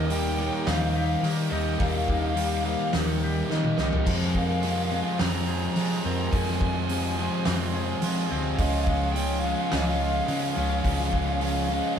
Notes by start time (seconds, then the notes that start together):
Already playing: D#2 D#3 A#3 D#4 G4 A#4 G5
0.06 D#5
0.10 D#3 G3 A#3 D#4 G5, open hi-hat
0.19 G5
0.26 G5
0.32 G5
0.38 D#3 G3 A#3 D#4 C#5 G5
0.47 G5
0.55 G5
0.62 D#3 G5
0.66 D#2 G3 A#3 D#4 C5 F5, snare, open hi-hat
0.75 F5
0.82 F5
0.89 F5
0.96 G4 F5
1.05 F5
1.13 F5
1.23 D#3 G3 A#3 D#4, open hi-hat
1.51 D#2 D#3 G3 A#3 D#4 A#4 D#5
1.79 D#2 D#3 G3 A#3 D#4 F5, kick, open hi-hat
1.87 F5
1.95 F5
2.03 F5
2.08 A#3 F5, kick
2.19 F5
2.26 F5
2.34 D#3 G3 A#3 D#4 F5, open hi-hat
2.42 F5
2.49 F5
2.57 F5
2.63 D#3 G3 A#3 D#4 C5 F5
2.74 F5
2.81 F5
2.93 D#2 D#3 G3 A#3 D#4 A#4, snare, open hi-hat
3.24 G4
3.49 D#3 G3 A#3 D#4 D#5, snare
3.64 mid tom
3.77 C2 D#3 G3 A#3 D#4, snare
3.93 floor tom
4.05 F2 C3 F3 G#3 C4 F4 G#4 C5 G#5, kick, open hi-hat, crash
4.21 snare
4.35 G#3 A#4 F5, kick
4.45 F5
4.52 F5
4.60 F2 C3 F3 G#3 F5, open hi-hat
4.64 C4 F4 F5
4.77 F5
4.83 F5
4.91 F2 C3 F3 G#3 C4 F4 C5 F5
5.01 F5
5.09 F5
5.19 F2 C3 F3 G#3 C4 F4 C5 A#5, snare, open hi-hat
5.27 A#5
5.35 A#5
5.42 A#5
5.48 G#4 A#5
5.58 A#5
5.66 A#5
5.73 F2 C3 F3 A#5, open hi-hat
5.78 G#3 C4 F4 A#5
5.89 A#5
5.97 A#5
6.04 F2 C3 F3 G#3 C4 F4 A#4 A#5
6.13 A#5
6.20 A#5
6.28 G#5 A#5
6.33 F2 C3 F3 G#3 C4 F4, kick, open hi-hat
6.40 G#5
6.47 G#5, snare
6.55 G#5
6.61 G#3 G#5, kick
6.72 G#5
6.80 G#5
6.89 F2 C3 F3 G#3 C4 F4 G#5, open hi-hat
6.98 G#5
7.04 G#5
7.12 G#5
7.17 F2 C3 F3 G#3 C4 F4 C5 G#5
7.27 G#5
7.34 G#5
7.45 F2 C3 F3 G#3 C4 F4 C5, snare, open hi-hat
7.75 G#4
8.01 F2 C3 F3 G#3 C4 F4 F5, open hi-hat
8.30 D2 F2 C3 F3 G#3 C4 F4
8.57 C#2 C#3 F3 G#3 C#4 F4 C#5 D#5 F5, kick, open hi-hat
8.65 F5
8.72 F5
8.80 F5
8.87 G#3 C#5 F5, kick
8.95 F5
9.02 F5
9.12 C#3 F3 G#3 G5, open hi-hat
9.17 C#4 F4
9.40 C#3 F5
9.44 F3 G#3 C#4 F4 F5
9.48 F5
9.55 F5
9.62 F5
9.70 C#2 C#3 F3 G#3 C#4 F4 D#5 F5, snare, open hi-hat
9.78 F5
9.86 F5
9.94 F5
10.01 F4 F5
10.09 F5
10.17 F5
10.25 C#3 F3 G#3 C#4 F4 F5, open hi-hat
10.32 F5
10.40 F5
10.49 F5
10.55 C#2 C#3 F3 G#3 C#4 F4 C#5 F5
10.63 F5
10.71 F5
10.79 F5
10.84 C#2 C#3 F3 G#3 C#4 F4 F5, kick, open hi-hat
10.94 F5
10.99 F5, snare
11.10 G#3 F5, kick
11.18 F5
11.26 F5
11.33 F5
11.40 C#3 F3 G#3 C#4 F4 F5, open hi-hat
11.48 F5
11.57 F5
11.64 F5
11.68 C#3 F3 G#3 C#4 F4 D#5
11.73 F5
11.80 F5
11.88 F5
11.94 F5